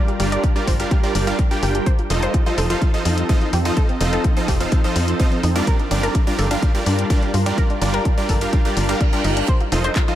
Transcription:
Already playing: G3 D4 F4 G4 A#4 D5
0.08 G4, closed hi-hat
0.20 G1 G3 D4 F4 G4 A#4 D5, open hi-hat
0.32 D5, closed hi-hat
0.44 G4, kick, closed hi-hat
0.56 G3 D4 F4 G4 A#4 D5, closed hi-hat
0.67 G1 C5, kick, open hi-hat
0.80 G3 D4 F4 G4 A#4 F5, closed hi-hat
0.91 G4, kick, closed hi-hat
1.03 G3 D4 F4 G4 A#4 D5, closed hi-hat
1.15 G1 G4, open hi-hat
1.27 G3 D4 F4 G4 A#4 F5, closed hi-hat
1.39 G4, kick, closed hi-hat
1.51 G3 D4 F4 G4 A#4 G5, closed hi-hat
1.63 G1 G4, open hi-hat
1.75 G4, closed hi-hat
1.86 F3 C4 D#4 A4 C5, kick, closed hi-hat
1.99 F4, closed hi-hat
2.10 F1 F3 D#4 F4 A4 C5 D#5, open hi-hat
2.23 C5, closed hi-hat
2.34 F4, kick, closed hi-hat
2.46 F3 D#4 F4 A4 C5 D#5, closed hi-hat
2.58 F1 A4, open hi-hat
2.70 F3 D#4 F4 A4 C5 F5, closed hi-hat
2.82 F4, kick, closed hi-hat
2.94 F3 D#4 F4 A4 C5 D#5, closed hi-hat
3.05 F2 F4, open hi-hat
3.18 closed hi-hat
3.29 F3 D#4 F4 A4 C5 D#5, kick, closed hi-hat
3.42 F4, closed hi-hat
3.53 F2 G4, open hi-hat
3.65 F3 D#4 F4 A4 C5 D#5, closed hi-hat
3.77 A4, kick, closed hi-hat
3.89 C4, closed hi-hat
4.01 F1 F3 C4 D#4 F4 A4 C5 D#5, open hi-hat
4.13 A4, closed hi-hat
4.24 C4, kick, closed hi-hat
4.37 F3 C4 D#4 F4 A4 C5 D#5, closed hi-hat
4.48 F1 G4, kick, open hi-hat
4.60 F3 C4 D#4 F4 A4 C5 F5, closed hi-hat
4.72 C4, kick, closed hi-hat
4.84 F3 D#4 F4 A4 C5 D#5, closed hi-hat
4.96 F2 C4, open hi-hat
5.08 closed hi-hat
5.20 F3 C4 D#4 F4 A4 C5 D#5, kick, closed hi-hat
5.32 C4, closed hi-hat
5.43 F2 D#4, open hi-hat
5.56 G3 C4 D4 F4 G4 A#4 D5, closed hi-hat
5.67 G3 D4 F4 A#4, kick, closed hi-hat
5.79 D4, closed hi-hat
5.91 G1 G3 D4 F4 G4 A#4 D5, open hi-hat
6.03 A#4, closed hi-hat
6.15 D4, kick, closed hi-hat
6.27 G3 D4 F4 G4 A#4 D5, closed hi-hat
6.39 G1 A4, open hi-hat
6.51 G3 D4 F4 G4 A#4 F5, closed hi-hat
6.62 D4, kick, closed hi-hat
6.75 G3 D4 F4 G4 A#4 D5, closed hi-hat
6.86 G2 D4, open hi-hat
6.99 closed hi-hat
7.10 G3 D4 F4 G4 A#4 D5, kick, closed hi-hat
7.22 D4, closed hi-hat
7.34 G2 F4, open hi-hat
7.46 G3 D4 F4 G4 A#4 D5, closed hi-hat
7.58 A#4, kick, closed hi-hat
7.70 D4, closed hi-hat
7.82 G1 G3 D4 F4 G4 A#4 D5, open hi-hat
7.94 A#4, closed hi-hat
8.05 D4, kick, closed hi-hat
8.18 G3 D4 F4 G4 A#4 D5, closed hi-hat
8.29 G1 A4, kick, open hi-hat
8.41 G3 D4 F4 G4 A#4 F5, closed hi-hat
8.53 D4, kick, closed hi-hat, reverse cymbal
8.65 G3 D4 F4 G4 A#4 D5, closed hi-hat
8.77 G1 D4, open hi-hat
8.89 G3 D4 F4 G4 A#4 F5, closed hi-hat
9.01 D4, kick, closed hi-hat
9.13 G3 D4 F4 G4 A#4 G5, closed hi-hat
9.24 G1 D#4, open hi-hat
9.37 D4, closed hi-hat
9.48 F3 C4 D#4 A4 C5, kick, closed hi-hat
9.60 F4, closed hi-hat
9.72 F1 F3 D#4 F4 A4 C5 D#5, open hi-hat
9.84 C5, closed hi-hat
9.95 F4, kick, clap, closed hi-hat
10.08 F3 D#4 F4 A4 C5 D#5, closed hi-hat

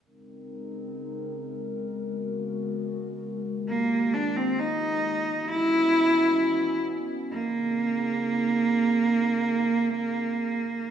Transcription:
0.05 C#3 G#3 C4 D#4 A#4
1.87 C#3 B3 F#4
3.46 D#3 A#3 F4 G4
3.68 A#3
4.14 D4
4.37 C4
4.59 D#4
5.27 E3 B3 C#4 F#4 D#5
5.50 E4
7.32 C#3 A#3 C4 D#4 G#4

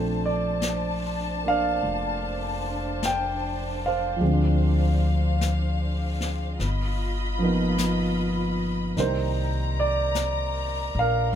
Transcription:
Already playing: A#1 F3 A3 C4 D4 A4 C5 A5
0.26 D5
0.62 brush sweep, snare, hi-hat pedal
1.43 A#3 D4
1.48 D5 F5
1.83 F1, brush sweep
3.03 G5, brush sweep, snare, hi-hat pedal
3.86 C5 F5
4.16 F3
4.21 D2 G#3 C4 F5, brush sweep
4.28 D4
5.41 brush sweep, snare, hi-hat pedal
6.20 snare
6.59 G1 F4 D#5 B5, brush sweep, snare
7.39 F3 A#3 B3
7.44 D#4
7.78 brush sweep, snare, hi-hat pedal
8.96 C2 D#3 G3 A#3 D#4 A#4 C5 A#5, brush sweep, snare
9.01 D#4
9.80 D5
10.15 brush sweep, snare, hi-hat pedal
10.95 A#1
10.99 A#4 F5

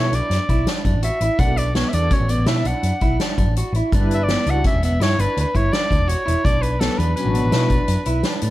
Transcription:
Already playing: E4
0.00 C#5
0.12 B1 D4 D5, closed hi-hat
0.30 F#2, snare, closed hi-hat
0.49 B1 E4, kick, closed hi-hat
0.67 D4, snare, closed hi-hat
0.85 F#2 D4, kick, closed hi-hat
0.94 A1
1.03 F#4 E5, closed hi-hat
1.21 A1 E4, closed hi-hat
1.38 B1 B3 D4 F#4 A4 D5 F#5, kick, closed hi-hat
1.57 D5, closed hi-hat
1.75 B3 C#5, snare, closed hi-hat
1.89 E5
1.93 E2 B3 D4 F#4 A4 D5, closed hi-hat
2.11 C#4 C#5, kick, closed hi-hat
2.20 A1
2.28 B3 D5, closed hi-hat
2.38 A1
2.46 B2 E4 E5, snare, closed hi-hat
2.64 B1 D4 F#5, closed hi-hat
2.83 F#2, closed hi-hat
3.01 B1 E4, kick, closed hi-hat
3.20 D4, snare, closed hi-hat
3.38 F#2 D4, kick, closed hi-hat
3.47 A1
3.56 F#4, closed hi-hat
3.73 A1 E4, closed hi-hat
3.92 G1 G3 D4 E4 B4, kick, closed hi-hat
4.11 E5, closed hi-hat
4.23 D5
4.28 B3, snare, closed hi-hat
4.45 C#2 G3 D4 E4 F#4, closed hi-hat
4.50 F#5
4.64 C#4 E5, kick, closed hi-hat
4.74 E1
4.83 B3 E5, closed hi-hat
4.91 E1
5.00 G2 E4 C#5, snare, closed hi-hat
5.18 G1 D4 B4, closed hi-hat
5.37 D2 B4, closed hi-hat
5.54 G1 E4 C#5, kick, closed hi-hat
5.73 D4 D5, snare, closed hi-hat
5.90 D2 D4, kick, closed hi-hat
6.00 E1
6.08 F#4 C#5, closed hi-hat
6.26 E1 E4, closed hi-hat
6.44 B1 D4 D5, kick, closed hi-hat
6.62 B4, closed hi-hat
6.80 B2 F#3 B3 D4 A4 B4, snare, closed hi-hat
6.98 E2 D4 B4, closed hi-hat
7.15 B2 F#3 C#4 D4 F#4 B4, closed hi-hat
7.25 A1
7.34 B3, closed hi-hat
7.44 A1
7.52 B2 E4, snare, closed hi-hat
7.70 B1 D4, kick, closed hi-hat
7.88 F#2, closed hi-hat
8.05 B1 E4, closed hi-hat
8.23 D4, snare, closed hi-hat
8.41 A2 D4, closed hi-hat

